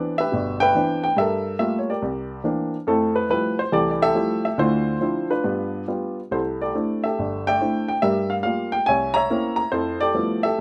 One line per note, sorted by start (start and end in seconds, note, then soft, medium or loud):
0.00 0.20 E3 medium
0.00 0.21 B3 soft
0.00 0.21 C4 soft
0.00 0.21 D4 medium
0.00 0.29 E4 medium
0.00 0.19 G4 medium
0.00 0.19 B4 medium
0.00 0.15 D5 medium
0.18 1.01 G4 medium
0.18 0.61 B4 medium
0.18 0.60 E5 loud
0.32 0.70 G1 medium
0.32 0.70 B2 medium
0.60 1.14 B4 medium
0.60 1.14 E5 medium
0.60 1.01 G5 loud
0.75 1.05 E3 medium
0.75 1.05 B3 soft
0.75 1.06 C4 soft
0.75 1.06 D4 medium
1.04 1.18 G5 medium
1.17 1.54 G2 medium
1.17 1.99 A4 medium
1.17 1.89 A#4 medium
1.17 1.58 E5 medium
1.59 1.90 G3 medium
1.59 1.90 A3 soft
1.59 1.90 A#3 soft
1.59 1.90 F4 medium
1.59 1.78 E5 medium
1.79 1.89 C#5 medium
1.90 2.71 G4 medium
1.90 2.71 A#4 medium
1.90 2.41 D5 medium
2.02 2.39 C2 medium
2.44 2.75 E3 medium
2.44 2.75 A#3 medium
2.44 2.75 C4 soft
2.44 2.75 D4 medium
2.87 3.24 F2 medium
2.87 3.25 A3 medium
2.87 3.70 C4 medium
2.87 3.29 E4 medium
2.87 3.18 A4 medium
3.16 3.29 B4 medium
3.30 3.60 F3 medium
3.30 3.60 G3 medium
3.30 3.61 A3 soft
3.30 3.61 E4 medium
3.30 3.60 B4 medium
3.59 3.72 C5 medium
3.72 4.10 C2 medium
3.72 4.10 E3 medium
3.72 4.00 G4 medium
3.72 4.01 A4 medium
3.72 3.89 D5 medium
3.91 4.01 D5 medium
4.02 4.55 G4 medium
4.02 4.55 A4 medium
4.02 4.42 E5 loud
4.15 4.46 F3 medium
4.15 4.46 G3 medium
4.15 4.46 A3 medium
4.15 4.46 E4 medium
4.45 4.59 E5 medium
4.58 4.95 D2 medium
4.58 4.96 D3 medium
4.58 5.01 E4 medium
4.58 5.29 F4 medium
4.58 5.27 C5 medium
5.01 5.32 F3 medium
5.01 5.32 C4 soft
5.01 5.29 D4 soft
5.01 5.32 E4 medium
5.30 6.14 D4 medium
5.30 5.87 F4 medium
5.30 5.84 B4 medium
5.44 5.82 G2 medium
5.44 5.82 B3 medium
5.88 6.19 G3 medium
5.88 6.19 B3 soft
5.88 6.19 F4 medium
6.31 6.69 C2 medium
6.31 6.74 E4 medium
6.31 6.61 A4 medium
6.31 6.39 C5 medium
6.61 7.04 G4 medium
6.61 7.04 A4 medium
6.61 7.02 D5 medium
6.74 7.05 A3 medium
6.74 7.06 C4 soft
6.74 7.06 D4 soft
6.74 7.06 E4 medium
7.04 7.86 G4 medium
7.04 7.86 A4 medium
7.04 7.44 E5 medium
7.19 7.56 G1 medium
7.47 8.00 D5 medium
7.47 8.00 E5 medium
7.47 7.87 G5 loud
7.60 7.91 A3 medium
7.60 7.91 C4 medium
7.60 7.91 D4 medium
7.60 7.91 E4 medium
7.88 8.02 G5 medium
8.02 8.40 G2 medium
8.02 8.40 G3 medium
8.02 8.84 A#4 medium
8.02 8.32 E5 loud
8.30 8.35 F5 medium
8.43 8.75 G3 medium
8.43 8.76 A#3 soft
8.43 8.76 F4 medium
8.43 8.74 F5 loud
8.72 8.87 G5 loud
8.86 9.25 C2 medium
8.86 9.14 C#5 medium
8.86 9.15 E5 medium
8.86 9.14 G#5 loud
9.14 9.68 C#5 medium
9.14 9.69 E5 medium
9.14 9.55 A#5 loud
9.30 9.60 A#3 medium
9.30 9.60 C4 medium
9.30 9.60 C#4 soft
9.30 9.60 E4 medium
9.56 9.70 A#5 medium
9.72 10.10 F2 medium
9.72 10.15 E4 medium
9.72 10.01 A4 medium
9.72 10.02 C5 medium
10.00 10.43 G4 medium
10.00 10.43 A4 medium
10.00 10.41 D5 loud
10.15 10.45 F3 medium
10.15 10.45 G3 soft
10.15 10.46 A3 medium
10.15 10.46 B3 medium
10.15 10.46 E4 medium
10.43 10.61 G4 medium
10.43 10.61 A4 medium
10.43 10.61 E5 loud